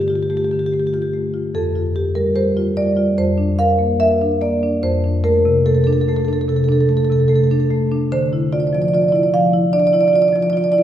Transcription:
0.00 0.23 D3 soft
0.00 0.08 G4 soft
0.08 0.43 F4 soft
0.08 0.15 G4 soft
0.15 0.23 G4 soft
0.23 0.30 G4 medium
0.30 0.64 A3 soft
0.30 0.37 G4 medium
0.37 0.44 G4 medium
0.44 0.51 G4 soft
0.51 0.86 D3 soft
0.51 0.59 G4 soft
0.59 0.66 G4 soft
0.66 0.74 G4 medium
0.73 1.06 A3 soft
0.73 0.80 G4 soft
0.80 0.87 G4 soft
0.87 0.94 G4 soft
0.93 1.26 F4 soft
0.93 1.02 G4 medium
1.02 1.10 G4 soft
1.13 1.47 A3 soft
1.34 1.55 F4 soft
1.55 3.14 F2 medium
1.55 2.13 A4 medium
1.76 2.08 F4 soft
1.96 2.28 G4 medium
2.15 2.48 G3 soft
2.15 2.36 A#4 medium
2.35 2.68 G4 soft
2.35 2.75 C5 medium
2.57 2.89 F4 soft
2.77 3.10 G3 soft
2.77 3.16 D5 medium
2.97 3.18 F4 soft
3.18 4.79 F2 medium
3.18 3.57 C5 medium
3.38 3.71 D4 soft
3.59 3.92 A#4 soft
3.59 3.98 F5 medium
3.79 4.12 A#3 soft
4.00 4.33 A#4 medium
4.00 4.40 E5 medium
4.22 4.54 D4 medium
4.41 4.75 A#3 soft
4.41 4.81 D5 medium
4.63 4.83 D4 soft
4.83 6.43 F2 medium
4.83 5.22 C5 medium
5.04 5.37 D4 soft
5.24 5.57 A3 medium
5.24 5.63 A#4 medium
5.45 5.77 C3 soft
5.66 5.98 A3 medium
5.66 5.75 A4 medium
5.75 5.84 A4 medium
5.84 6.19 D4 medium
5.84 5.93 A4 medium
5.93 6.01 A4 medium
6.01 6.09 A4 medium
6.08 6.40 A3 soft
6.08 6.17 A4 medium
6.17 6.25 A4 medium
6.25 6.60 D4 soft
6.25 6.33 A4 medium
6.33 6.41 A4 medium
6.41 6.49 A4 medium
6.48 6.80 C3 soft
6.48 6.56 A4 medium
6.56 6.64 A4 medium
6.64 6.72 A4 medium
6.69 7.00 D4 medium
6.69 6.81 A4 medium
6.81 6.89 A4 medium
6.89 7.21 A3 soft
6.89 6.97 A4 medium
6.97 7.04 A4 medium
7.04 7.12 A4 medium
7.10 7.41 C3 soft
7.10 7.20 A4 medium
7.20 7.28 A4 medium
7.28 7.61 A3 medium
7.28 7.36 A4 medium
7.36 7.44 A4 medium
7.44 7.51 A4 medium
7.51 7.82 D4 medium
7.51 7.60 A4 medium
7.60 7.65 A4 medium
7.71 8.02 A3 medium
7.92 8.11 D4 medium
8.12 9.69 D3 medium
8.12 8.50 C5 medium
8.33 8.64 E4 soft
8.53 8.84 F4 medium
8.53 8.60 D5 medium
8.60 8.67 D5 medium
8.67 8.74 D5 medium
8.73 9.04 F3 soft
8.73 8.82 D5 medium
8.82 8.88 D5 medium
8.88 8.95 D5 medium
8.94 9.25 F4 medium
8.94 9.01 D5 medium
9.01 9.08 D5 medium
9.08 9.44 E4 medium
9.08 9.16 D5 medium
9.16 9.23 D5 medium
9.23 9.30 D5 medium
9.34 9.65 F3 soft
9.34 9.72 F5 medium
9.53 9.85 E4 soft
9.73 10.05 D4 soft
9.73 9.80 D5 medium
9.80 9.87 D5 medium
9.87 9.94 D5 medium
9.93 10.25 E4 soft
9.93 10.01 D5 medium
10.01 10.08 D5 medium
10.08 10.16 D5 medium
10.13 10.45 F4 soft
10.13 10.22 D5 medium
10.22 10.28 D5 medium
10.28 10.36 D5 medium
10.33 10.65 F3 soft
10.33 10.42 D5 medium
10.42 10.50 D5 medium
10.50 10.83 F4 medium
10.50 10.57 D5 medium
10.57 10.64 D5 medium
10.64 10.72 D5 medium
10.72 10.83 E4 medium
10.72 10.78 D5 medium
10.78 10.83 D5 medium

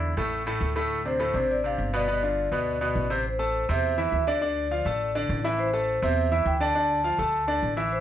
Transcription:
0.00 0.12 E2 medium
0.00 0.12 D3 medium
0.00 0.12 D4 medium
0.00 0.12 E4 medium
0.17 0.58 A1 medium
0.17 0.41 A2 medium
0.17 0.41 A3 medium
0.17 0.42 A4 medium
0.47 0.71 A2 medium
0.47 0.71 A3 medium
0.47 0.71 A4 medium
0.61 1.29 D2 medium
0.76 1.00 A2 medium
0.76 1.00 A3 medium
0.76 1.00 A4 medium
1.05 1.17 C3 medium
1.05 1.17 C4 medium
1.05 1.18 D4 medium
1.05 1.34 C5 medium
1.20 1.32 A2 medium
1.20 1.32 A3 medium
1.20 1.32 A4 medium
1.34 1.75 A1 medium
1.34 1.58 C3 medium
1.34 1.58 C4 medium
1.34 1.59 D4 medium
1.34 1.51 C5 medium
1.51 1.65 D5 medium
1.64 1.88 C3 medium
1.64 1.88 C4 medium
1.64 1.88 D4 medium
1.64 1.92 F5 loud
1.78 2.46 G1 medium
1.93 2.05 B2 medium
1.93 2.06 B3 medium
1.93 2.06 B4 medium
1.93 3.07 D5 medium
2.08 2.20 B2 medium
2.08 2.20 B3 medium
2.08 2.20 B4 medium
2.23 2.47 D3 medium
2.23 2.47 D4 medium
2.23 2.47 F4 medium
2.52 2.93 D2 medium
2.52 2.76 B2 medium
2.52 2.76 B3 medium
2.52 2.76 B4 medium
2.81 3.05 B2 medium
2.81 3.05 B3 medium
2.81 3.05 B4 medium
2.95 3.63 A1 medium
3.10 3.22 C3 medium
3.10 3.23 C4 medium
3.10 3.23 C5 medium
3.27 3.67 C5 medium
3.39 3.63 A3 medium
3.39 3.63 A4 medium
3.39 3.64 A5 medium
3.69 4.10 E2 medium
3.69 3.93 C3 medium
3.69 3.93 C4 medium
3.69 3.93 C5 medium
3.69 3.97 E5 medium
3.98 4.22 E3 medium
3.98 4.22 E4 medium
3.98 4.22 E5 medium
3.98 4.06 E5 medium
4.12 4.80 D2 loud
4.12 4.27 E5 medium
4.27 4.39 D3 medium
4.27 4.39 D4 loud
4.27 4.40 D5 loud
4.27 5.40 D5 loud
4.41 4.65 D3 medium
4.41 4.66 D4 medium
4.41 4.66 D5 medium
4.71 4.83 F3 medium
4.71 4.83 F4 medium
4.71 4.83 F5 medium
4.85 5.26 A1 medium
4.85 5.10 A3 medium
4.85 5.10 A4 medium
4.85 5.10 A5 medium
5.15 5.39 D3 medium
5.15 5.39 D4 medium
5.15 5.39 D5 medium
5.29 5.97 A1 loud
5.44 5.68 E3 medium
5.44 5.68 E4 medium
5.44 5.68 E5 medium
5.59 6.04 C5 loud
5.73 5.97 A3 medium
5.73 5.97 A4 medium
5.73 5.97 A5 medium
6.02 6.43 E2 medium
6.02 6.26 C3 medium
6.02 6.26 C4 medium
6.02 6.27 C5 medium
6.02 6.48 E5 loud
6.32 6.55 E3 medium
6.32 6.55 E4 medium
6.32 6.56 E5 medium
6.46 7.13 D2 medium
6.46 6.53 G5 loud
6.60 6.72 D3 medium
6.60 6.72 D4 medium
6.60 6.73 D5 medium
6.60 7.59 A5 loud
6.75 6.99 D3 medium
6.75 6.99 D4 medium
6.75 6.99 D5 medium
7.04 7.16 F3 medium
7.04 7.16 F4 medium
7.04 7.16 F5 medium
7.18 7.59 D2 medium
7.18 7.43 A3 medium
7.18 7.43 A4 medium
7.18 7.43 A5 medium
7.47 7.72 D3 medium
7.47 7.72 D4 medium
7.47 7.72 D5 medium
7.62 8.00 A1 medium
7.76 8.00 E3 medium
7.76 8.00 E4 medium
7.76 8.00 E5 medium
7.92 8.00 C5 medium

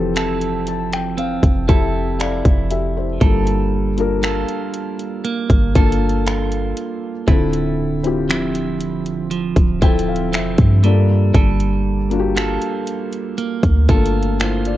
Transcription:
0.00 1.39 F1 loud
0.00 1.49 E3 medium
0.00 3.21 F3 medium
0.00 1.68 C4 medium
0.00 1.69 E4 medium
0.00 0.16 F4 medium
0.00 1.70 G4 medium
0.00 0.17 A4 medium
0.00 1.71 A4 medium
0.16 1.16 C4 medium
0.16 1.68 E4 medium
0.16 1.69 A4 medium
0.16 finger snap medium
0.16 closed hi-hat medium
0.41 closed hi-hat soft
0.67 0.91 A5 medium
0.67 closed hi-hat medium
0.93 1.17 G5 medium
0.93 finger snap medium
0.93 closed hi-hat soft
1.18 1.67 C4 medium
1.18 1.66 F5 medium
1.18 closed hi-hat medium
1.43 1.67 F1 medium
1.43 kick medium
1.43 closed hi-hat soft
1.68 2.42 F1 loud
1.68 3.31 C4 medium
1.68 3.04 C4 medium
1.68 2.18 E4 medium
1.68 2.20 E4 medium
1.68 2.20 G4 medium
1.68 3.21 A4 medium
1.68 2.19 A4 medium
1.68 2.16 E5 medium
1.68 kick loud
1.68 closed hi-hat medium
2.20 3.31 E4 medium
2.20 2.68 A4 medium
2.20 3.18 D5 medium
2.20 2.68 F5 medium
2.20 finger snap loud
2.20 closed hi-hat medium
2.45 3.18 F1 loud
2.45 kick medium
2.45 closed hi-hat soft
2.71 2.95 G4 medium
2.71 2.95 E5 medium
2.71 closed hi-hat medium
2.97 3.45 E4 medium
2.97 3.45 C5 medium
3.21 4.44 G1 loud
3.21 7.28 G3 medium
3.21 3.89 A#3 medium
3.21 3.89 D4 medium
3.21 3.90 F4 medium
3.21 4.24 A4 medium
3.21 3.90 A4 medium
3.21 kick loud
3.21 closed hi-hat medium
3.47 closed hi-hat soft
3.97 5.55 A#3 medium
3.97 5.56 D4 medium
3.97 5.56 F4 medium
3.97 5.57 A#4 medium
3.97 closed hi-hat soft
4.23 5.23 A#3 medium
4.23 5.76 F4 medium
4.23 5.76 A4 medium
4.23 finger snap loud
4.23 closed hi-hat medium
4.49 closed hi-hat soft
4.74 closed hi-hat medium
4.99 closed hi-hat soft
5.25 5.74 A#3 medium
5.25 closed hi-hat medium
5.50 5.74 G1 medium
5.50 kick medium
5.50 closed hi-hat medium
5.75 6.73 G1 loud
5.75 7.11 A#3 medium
5.75 7.38 A#3 medium
5.75 7.11 D4 medium
5.75 6.26 F4 medium
5.75 7.12 F4 medium
5.75 9.27 A4 medium
5.75 7.12 A4 medium
5.75 kick medium
5.75 closed hi-hat medium
5.92 closed hi-hat medium
6.09 closed hi-hat soft
6.26 7.28 F4 medium
6.26 finger snap loud
6.26 closed hi-hat medium
6.52 closed hi-hat soft
6.77 closed hi-hat medium
7.27 9.53 D1 loud
7.27 10.94 D3 medium
7.27 7.95 C4 medium
7.27 7.96 E4 medium
7.27 8.29 E4 medium
7.27 7.96 F4 medium
7.27 7.97 A4 medium
7.27 kick medium
7.27 closed hi-hat medium
7.53 closed hi-hat soft
8.03 9.62 C4 medium
8.03 9.63 E4 medium
8.03 9.63 F4 medium
8.03 9.64 G4 medium
8.03 closed hi-hat soft
8.29 9.30 F3 medium
8.29 9.81 C4 medium
8.29 9.82 E4 medium
8.29 finger snap medium
8.29 closed hi-hat medium
8.55 closed hi-hat medium
8.81 closed hi-hat medium
9.06 closed hi-hat soft
9.31 9.81 F3 medium
9.31 closed hi-hat medium
9.56 9.81 D1 loud
9.56 kick medium
9.56 closed hi-hat soft
9.82 10.35 D1 loud
9.82 10.83 F3 medium
9.82 10.84 C4 medium
9.82 10.31 C4 medium
9.82 10.84 E4 medium
9.82 10.94 E4 medium
9.82 10.84 F4 medium
9.82 10.85 A4 medium
9.82 10.06 G5 medium
9.82 kick medium
9.82 closed hi-hat medium
9.99 closed hi-hat medium
10.08 10.32 F5 medium
10.16 closed hi-hat soft
10.33 10.57 E1 loud
10.33 10.94 C4 medium
10.33 10.81 E5 medium
10.33 finger snap loud
10.33 closed hi-hat medium
10.58 11.32 G2 loud
10.58 kick medium
10.58 closed hi-hat soft
10.83 11.33 G3 medium
10.83 11.97 A#3 medium
10.83 11.97 D4 medium
10.83 11.98 F4 medium
10.83 11.98 A4 loud
10.83 11.32 D5 medium
10.83 closed hi-hat medium
11.34 12.58 G1 loud
11.34 14.77 G3 medium
11.34 12.37 A4 medium
11.34 kick loud
11.34 closed hi-hat medium
11.60 closed hi-hat soft
12.10 13.69 A#3 medium
12.10 13.69 D4 medium
12.10 13.70 F4 medium
12.10 12.19 F#4 medium
12.10 closed hi-hat soft
12.20 13.74 G4 medium
12.36 13.37 A#3 medium
12.36 13.89 F4 medium
12.36 13.90 A4 medium
12.36 finger snap loud
12.36 closed hi-hat medium
12.62 closed hi-hat medium
12.87 closed hi-hat medium
13.13 closed hi-hat soft
13.38 13.88 A#3 medium
13.38 closed hi-hat medium
13.63 13.88 D2 medium
13.63 kick medium
13.63 closed hi-hat soft
13.88 14.77 G1 loud
13.88 13.95 A3 medium
13.88 14.77 A#3 medium
13.88 14.77 D4 medium
13.88 14.40 F4 medium
13.88 14.77 A4 medium
13.88 14.41 A4 medium
13.88 kick loud
13.88 closed hi-hat medium
13.95 14.77 A#3 medium
14.06 closed hi-hat medium
14.23 closed hi-hat soft
14.40 14.65 E4 medium
14.40 14.77 F4 medium
14.40 14.64 C5 medium
14.40 finger snap loud
14.40 closed hi-hat medium
14.65 14.77 F4 medium
14.65 14.77 D5 medium
14.65 closed hi-hat soft

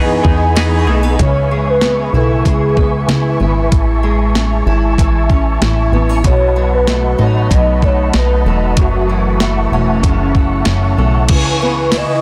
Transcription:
0.00 0.21 F#2 medium
0.00 0.24 E3 medium
0.00 1.19 E3 medium
0.00 0.23 B3 medium
0.00 0.25 B3 medium
0.00 0.24 D#4 medium
0.00 0.54 D#4 medium
0.00 0.22 G#4 medium
0.00 1.15 G#4 medium
0.00 1.15 D#5 medium
0.00 0.88 G#5 loud
0.00 1.15 G#5 medium
0.00 1.15 B5 medium
0.00 0.78 C#6 medium
0.24 0.88 E2 medium
0.24 0.87 B3 medium
0.24 0.56 B3 soft
0.24 0.57 D#4 medium
0.24 0.56 G#4 medium
0.24 kick medium
0.55 0.88 E3 medium
0.55 0.88 B3 medium
0.55 1.25 D#4 medium
0.55 0.88 D#4 medium
0.55 0.86 G#4 medium
0.55 snare loud
0.55 ride medium
0.55 tambourine medium
0.79 1.47 C#6 medium
0.86 1.17 B1 medium
0.86 1.03 A3 medium
0.86 1.20 D#4 medium
0.86 1.19 G#4 medium
0.90 1.21 B3 medium
1.03 1.25 B3 medium
1.18 2.10 C#2 loud
1.18 3.72 C#3 medium
1.18 3.69 B4 medium
1.18 1.71 C#5 loud
1.18 6.20 E5 medium
1.18 6.21 G#5 soft
1.18 6.21 C#6 medium
1.18 kick loud
1.18 closed hi-hat medium
1.51 2.45 G#3 medium
1.69 2.18 B4 medium
1.81 2.76 B3 medium
1.81 snare medium
1.81 closed hi-hat soft
2.13 2.43 B1 medium
2.13 3.09 E4 medium
2.13 2.49 A4 medium
2.45 3.05 C#2 medium
2.45 4.03 G#3 medium
2.45 3.41 G#4 medium
2.45 kick medium
2.45 closed hi-hat medium
2.77 3.39 B3 soft
2.77 kick medium
3.08 3.38 C#2 medium
3.08 4.66 E4 medium
3.08 snare loud
3.08 closed hi-hat medium
3.40 3.70 G#1 medium
3.40 3.78 B3 soft
3.72 4.63 A1 medium
3.72 11.26 A5 medium
3.72 kick loud
3.72 closed hi-hat medium
4.03 6.31 G#3 medium
4.35 5.29 C#4 medium
4.35 snare medium
4.35 closed hi-hat soft
4.66 4.96 G#1 medium
4.66 5.61 E4 medium
4.98 5.58 A1 loud
4.98 6.24 E3 medium
4.98 kick medium
4.98 closed hi-hat medium
5.30 5.93 C#4 soft
5.30 kick medium
5.61 5.91 A1 medium
5.61 6.31 E4 medium
5.61 snare medium
5.61 closed hi-hat medium
5.92 6.22 A1 medium
5.92 6.09 B3 medium
6.09 6.31 C#4 soft
6.24 7.15 B1 loud
6.24 8.77 B2 medium
6.24 6.75 C#5 medium
6.24 8.74 D#5 medium
6.24 11.26 F#5 medium
6.24 8.74 B5 medium
6.24 kick loud
6.24 closed hi-hat medium
6.56 7.50 F#3 medium
6.73 7.23 B4 medium
6.87 7.82 A3 medium
6.87 snare loud
6.87 closed hi-hat medium
7.18 7.49 A1 medium
7.18 8.13 D#4 medium
7.18 7.54 C#5 medium
7.50 8.11 B1 loud
7.50 9.09 F#3 medium
7.50 7.86 D#5 loud
7.50 kick medium
7.50 closed hi-hat medium
7.82 8.46 A3 medium
7.82 8.19 C#5 medium
7.82 kick medium
8.13 8.44 B1 medium
8.13 8.83 D#4 medium
8.13 8.63 B4 medium
8.13 snare loud
8.13 closed hi-hat medium
8.45 8.75 E1 medium
8.45 9.41 A3 medium
8.77 9.68 F#1 medium
8.77 11.30 F#2 medium
8.77 11.27 E5 medium
8.77 11.28 C#6 medium
8.77 kick loud
8.77 closed hi-hat medium
9.09 12.21 E3 soft
9.40 10.35 A3 medium
9.40 snare medium
9.40 closed hi-hat medium
9.71 10.01 E1 medium
9.71 10.67 C#4 medium
10.03 10.63 F#1 medium
10.03 11.30 C#3 medium
10.03 kick medium
10.03 closed hi-hat medium
10.35 10.97 A3 soft
10.35 kick medium
10.65 10.96 F#1 medium
10.65 11.65 C#4 medium
10.65 snare medium
10.65 closed hi-hat medium
10.97 11.28 B1 medium
10.97 11.36 A3 medium
11.29 12.04 C#2 loud
11.29 12.21 C#3 medium
11.29 12.21 E4 medium
11.29 12.21 B4 medium
11.29 12.21 G#5 medium
11.29 12.21 C#6 medium
11.29 kick loud
11.29 crash loud
11.29 ride medium
11.40 12.21 G#5 medium
11.62 12.21 B3 medium
11.62 11.98 B4 loud
11.92 12.21 E4 medium
11.92 snare loud
11.92 ride medium
11.92 tambourine medium
11.97 12.21 D#5 loud

